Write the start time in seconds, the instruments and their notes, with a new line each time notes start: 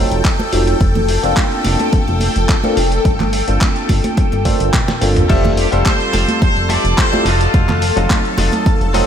Already playing: tine electric piano F#3 C4 D#4 F4 A4, analog synth pad A4 G5
0.11 analog synth bass F1, closed hi-hat, muted conga
0.25 kick, clap, closed hi-hat
0.39 closed hi-hat, muted conga, high conga
0.52 analog synth bass F1, tine electric piano F#3 C4 D#4 F4 A4, open hi-hat
0.67 closed hi-hat
0.81 analog synth bass F1, kick, closed hi-hat
0.95 closed hi-hat, high conga, low conga
1.08 open hi-hat
1.23 analog synth bass F1, tine electric piano A#3 C4 D4 F4 A4, closed hi-hat
1.37 kick, clap, closed hi-hat, high conga
1.52 closed hi-hat
1.65 analog synth bass F1, open hi-hat, muted conga
1.79 closed hi-hat, high conga
1.93 analog synth bass F1, kick, closed hi-hat
2.08 analog synth bass F1, closed hi-hat, muted conga
2.20 open hi-hat, high conga
2.36 analog synth bass F1, closed hi-hat
2.49 kick, clap, closed hi-hat
2.64 tine electric piano A#3 C4 D4 F4 A4, closed hi-hat, high conga
2.77 analog synth bass F1, open hi-hat
2.92 closed hi-hat
3.05 analog synth bass G1, kick, closed hi-hat
3.20 clap, closed hi-hat, high conga, low conga
3.33 open hi-hat
3.47 analog synth bass G1, tine electric piano A#3 C4 D4 F4 A4, closed hi-hat
3.61 kick, clap, closed hi-hat, high conga
3.76 closed hi-hat
3.89 analog synth bass G1, kick, open hi-hat, muted conga
4.04 closed hi-hat, high conga
4.17 kick, closed hi-hat
4.32 analog synth bass G1, closed hi-hat, muted conga
4.45 tine electric piano A#3 C4 D4 F4 A4, kick, open hi-hat, high conga
4.60 analog synth bass G1, closed hi-hat, muted conga
4.73 kick, clap, closed hi-hat, high tom
4.88 snare, closed hi-hat, muted conga, high conga
5.01 analog synth bass G1, tine electric piano A#3 C4 D4 F4 A4, open hi-hat
5.16 closed hi-hat, mid tom
5.29 analog synth bass F1, tine electric piano G3 C4 F4 A4 E5, clean electric guitar F4 G4 A4 E5, analog synth pad A4 A5, kick, closed hi-hat, crash
5.44 closed hi-hat, high conga, low conga
5.57 trumpet section G4, open hi-hat
5.72 analog synth bass F1, tine electric piano G3 C4 F4 A4, clean electric guitar F4 G4 A4 C5, closed hi-hat
5.86 trumpet section C5, kick, clap, closed hi-hat, high conga
6.01 closed hi-hat
6.13 analog synth bass F1, clean electric guitar F4 G4 A4 F5, open hi-hat, muted conga
6.28 closed hi-hat, high conga
6.42 analog synth bass F1, trumpet section C5, kick, closed hi-hat
6.56 analog synth bass F1, closed hi-hat
6.69 clean electric guitar F4 G4 A4 E5, trumpet section D5, open hi-hat, high conga
6.84 analog synth bass F1, closed hi-hat
6.97 clean electric guitar F4 G4 A4 C5, trumpet section C5, kick, clap, closed hi-hat
7.12 tine electric piano G3 C4 E4 F4 A4, closed hi-hat, high conga
7.25 analog synth bass F1, clean electric guitar F4 F#4 A4 D#5, trumpet section F4, open hi-hat
7.41 closed hi-hat
7.54 analog synth bass F1, kick, closed hi-hat
7.69 clap, closed hi-hat, high conga, low conga
7.82 open hi-hat
7.96 analog synth bass F1, tine electric piano F#3 C4 D#4 A4 F5, clean electric guitar F4 F#4 A4 D#5, closed hi-hat
8.10 kick, clap, closed hi-hat, high conga
8.25 closed hi-hat
8.38 analog synth bass F1, clean electric guitar F4 F#4 A4 D#5, open hi-hat, muted conga
8.52 closed hi-hat, high conga
8.66 kick, closed hi-hat
8.81 analog synth bass F1, closed hi-hat
8.94 tine electric piano F#3 C4 D#4 F4 A4, clean electric guitar F4 F#4 A4 D#5, open hi-hat, high conga